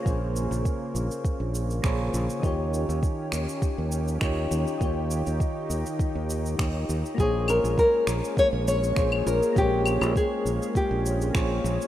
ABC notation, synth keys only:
X:1
M:4/4
L:1/8
Q:"Swing 16ths" 1/4=101
K:Bbdor
V:1 name="Synth keys"
[B,FAcd]6 [B,FAcd]2 | [E,EFGd]6 [E,EFGd]2 | [E,EFGd]6 z2 | [B,FAcd]6 [B,FAcd]2 |
[A,B,Fcd]6 [B,FAcd]2 |]